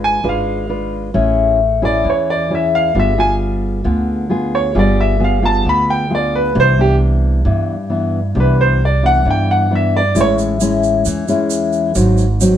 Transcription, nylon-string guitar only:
0.00 0.22 G#3 medium
0.00 0.20 D4 medium
0.00 0.20 F4 medium
0.00 0.21 B4 medium
0.24 1.12 G#3 medium
0.24 0.65 D4 medium
0.24 0.65 F4 medium
0.24 0.66 B4 medium
0.69 1.11 D4 soft
0.69 1.11 F4 medium
0.69 1.11 B4 medium
1.14 2.02 A3 medium
1.14 1.59 C#4 medium
1.14 1.59 E4 medium
1.14 1.59 G#4 medium
1.82 2.46 C#4 medium
1.82 2.46 E4 medium
1.82 2.46 G#4 medium
2.05 2.92 E3 soft
2.50 2.93 C#4 soft
2.50 2.93 E4 medium
2.50 2.94 G#4 medium
2.95 3.83 G3 medium
2.95 3.14 B3 medium
2.95 3.14 F4 medium
2.95 3.14 G#4 medium
3.17 3.81 B3 soft
3.17 3.81 F4 medium
3.17 3.82 G#4 medium
3.84 4.73 D3 medium
3.84 4.26 B3 medium
3.84 4.26 F4 soft
3.84 4.27 G#4 soft
4.30 4.71 B3 soft
4.30 4.71 F4 medium
4.30 4.72 G#4 medium
4.75 5.63 G3 medium
4.75 5.16 B3 medium
4.75 5.17 F4 medium
4.75 5.17 G#4 medium
5.20 5.39 B3 medium
5.20 5.39 F4 medium
5.20 5.39 G#4 medium
5.42 6.07 B3 medium
5.42 6.07 F4 medium
5.42 6.07 G#4 medium
5.65 6.53 D3 soft
6.10 6.53 B3 medium
6.10 6.54 F4 medium
6.10 6.54 G#4 medium
6.55 7.43 C3 medium
6.55 6.74 E3 medium
6.55 6.74 B3 medium
6.55 6.74 D4 medium
6.78 7.42 E3 soft
6.78 7.42 B3 medium
6.78 7.42 D4 medium
7.45 8.33 G2 medium
7.45 7.74 E3 soft
7.45 7.74 B3 soft
7.45 7.75 D4 medium
7.90 8.19 E3 soft
7.90 8.19 B3 medium
7.90 8.19 D4 medium
8.35 9.23 C3 medium
8.35 8.80 E3 medium
8.35 8.80 B3 medium
8.35 8.81 D4 medium
9.03 9.22 E3 medium
9.03 9.22 B3 medium
9.03 9.22 D4 medium
9.26 10.13 G2 soft
9.26 9.67 E3 medium
9.26 9.67 B3 soft
9.26 9.67 D4 medium
9.70 10.01 E3 medium
9.70 10.01 B3 soft
9.70 10.01 D4 medium
10.15 11.03 A2 medium
10.15 10.57 G#3 medium
10.15 10.57 C#4 soft
10.15 10.57 E4 medium
10.61 11.25 G#3 medium
10.61 11.25 C#4 medium
10.61 11.25 E4 medium
11.06 11.93 E3 soft
11.28 11.94 G#3 medium
11.28 11.94 C#4 medium
11.28 11.94 E4 medium
11.95 12.57 G#2 medium
11.95 12.24 F#3 medium
11.95 12.25 C4 medium
11.95 12.25 D#4 medium
12.41 12.57 F#3 medium
12.41 12.57 C4 medium
12.41 12.57 D#4 soft

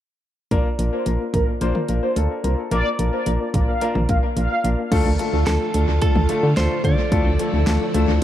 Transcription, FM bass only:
0.51 0.62 A#1 loud
0.79 0.90 A#1 loud
1.06 1.18 A#1 loud
1.34 1.45 A#1 medium
1.61 1.73 A#1 loud
1.89 2.00 A#1 loud
2.16 2.28 D2 loud
2.44 2.55 C2 medium
2.71 2.83 A#1 loud
2.99 3.10 A#1 loud
3.27 3.38 A#1 loud
3.54 3.65 A#1 medium
3.95 4.07 A#1 loud
4.09 4.20 A#1 loud
4.37 4.48 A#1 loud
4.64 4.75 A#1 loud
4.92 5.03 D2 loud
5.06 5.17 D2 loud
5.33 5.44 D2 loud
5.47 5.58 D2 loud
5.74 5.86 D2 loud
5.88 5.99 D2 loud
6.16 6.27 D2 loud
6.43 6.54 D3 loud
6.57 6.68 D2 loud
6.84 6.95 D3 loud
7.12 7.23 D2 loud
7.26 7.37 D2 medium
7.53 7.64 D2 loud
7.67 7.78 D2 loud
7.94 8.06 D2 loud
8.08 8.19 D2 medium

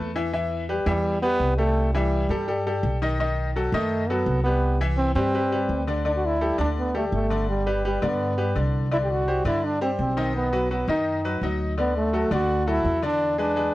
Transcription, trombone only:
0.87 1.20 G3 medium
1.22 1.56 B3 loud
1.58 1.91 A3 loud
1.94 2.62 G3 medium
3.73 4.11 A3 medium
4.09 4.43 B3 loud
4.44 4.77 B3 loud
4.97 5.14 C4 loud
5.15 5.83 C4 loud
6.07 6.12 D4 medium
6.17 6.27 F#4 medium
6.25 6.60 E4 loud
6.61 6.68 D4 medium
6.79 6.95 B3 medium
6.97 7.05 A3 medium
7.14 7.47 A3 medium
7.49 7.82 G3 medium
7.85 8.02 G3 medium
8.03 8.53 B3 medium
8.93 8.98 E4 loud
9.04 9.12 G4 medium
9.11 9.46 F#4 loud
9.47 9.66 E4 loud
9.65 9.82 D4 medium
9.82 9.90 C4 medium
10.00 10.33 C4 medium
10.36 10.69 B3 medium
10.71 10.88 B3 medium
10.90 11.39 D#4 medium
11.80 11.96 B3 medium
11.97 12.30 A3 medium
12.33 12.71 F#4 loud
12.69 13.04 E4 loud
13.05 13.38 D4 loud
13.40 13.74 D4 loud

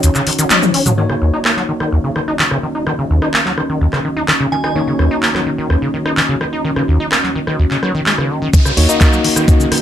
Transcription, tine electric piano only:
0.98 4.73 A#3 medium
0.98 4.73 D#4 medium
0.98 4.73 F#4 medium
0.98 4.73 C#5 medium
4.76 8.51 A#3 medium
4.76 8.51 D#4 medium
4.76 8.51 F#4 medium
4.76 8.51 C#5 medium
8.77 8.87 A#3 medium
8.77 8.87 D#4 medium
8.77 8.87 F#4 medium
8.77 8.87 C#5 medium
8.89 9.82 A#3 medium
8.89 9.82 D#4 medium
8.89 9.82 F#4 medium
8.89 9.82 D#5 loud

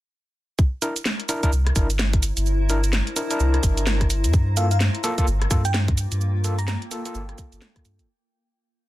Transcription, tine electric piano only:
0.82 0.93 D4 medium
0.82 0.93 E4 medium
0.82 0.93 A#4 loud
1.29 1.40 D4 loud
1.29 1.40 E4 medium
1.29 1.40 A#4 loud
1.43 1.50 D4 medium
1.43 1.50 E4 medium
1.43 1.50 A#4 loud
1.76 1.87 D4 medium
1.76 1.87 E4 medium
1.76 1.87 A#4 medium
2.70 2.81 D4 medium
2.70 2.81 E4 medium
2.70 2.81 A#4 loud
3.16 3.28 D4 medium
3.16 3.29 E4 medium
3.16 3.28 A#4 medium
3.31 4.09 D4 medium
3.31 4.09 E4 medium
3.31 4.09 A#4 medium
4.57 4.68 A#3 medium
4.57 4.68 F4 medium
4.57 4.68 A4 loud
5.04 5.15 A#3 loud
5.04 5.15 F4 medium
5.04 5.15 A4 loud
5.18 5.25 A#3 medium
5.18 5.25 F4 medium
5.18 5.25 A4 loud
5.51 5.62 A#3 medium
5.51 5.62 F4 medium
5.51 5.62 A4 loud
6.44 6.56 A#3 medium
6.44 6.56 F4 medium
6.44 6.56 A4 medium
6.91 7.03 A#3 medium
6.91 7.03 F4 medium
6.91 7.03 A4 medium
7.06 8.07 A#3 medium
7.06 8.07 F4 medium
7.06 8.07 A4 medium

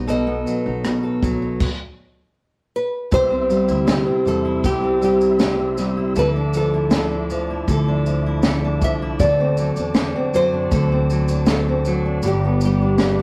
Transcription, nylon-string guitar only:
0.10 2.33 D#5 loud
2.76 3.13 B4 medium
3.14 4.28 C5 loud
4.28 4.65 A4 medium
4.66 5.03 G4 medium
5.05 5.41 G4 medium
5.42 6.18 G4 medium
6.19 6.29 B4 loud
6.57 6.94 A4 medium
6.95 8.04 A4 medium
8.84 8.94 E5 loud
9.20 9.92 D5 medium
10.36 11.50 C5 loud
11.50 12.27 A4 medium
12.27 12.61 G4 medium
12.65 13.22 G4 medium

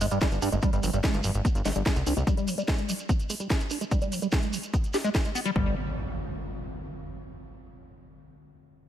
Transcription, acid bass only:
0.01 0.06 G#3 medium
0.11 0.19 G3 medium
0.22 0.27 G3 medium
0.42 0.50 D4 medium
0.52 0.55 G#3 medium
0.63 0.70 G3 loud
0.73 0.85 G3 medium
0.83 0.91 F3 loud
0.93 0.99 G3 medium
1.04 1.26 G#3 medium
1.24 1.29 F3 loud
1.45 1.48 B3 medium
1.65 1.71 G#3 medium
1.76 1.83 G3 medium
1.86 1.91 G3 medium
2.06 2.14 D4 medium
2.17 2.20 G#3 medium
2.27 2.35 G3 loud
2.37 2.49 G3 medium
2.48 2.55 F3 loud
2.58 2.63 G3 medium
2.68 2.90 G#3 medium
2.89 2.94 F3 loud
3.09 3.12 B3 medium
3.30 3.35 G#3 medium
3.40 3.48 G3 medium
3.50 3.55 G3 medium
3.71 3.79 D4 medium
3.81 3.84 G#3 medium
3.91 3.99 G3 loud
4.02 4.13 G3 medium
4.12 4.20 F3 loud
4.22 4.27 G3 medium
4.33 4.55 G#3 medium
4.53 4.58 F3 loud
4.74 4.77 B3 medium
4.94 4.97 G4 loud
5.04 5.10 G#3 loud
5.15 5.18 G4 medium
5.35 5.40 B3 medium
5.45 5.51 G3 loud
5.56 5.75 G3 medium

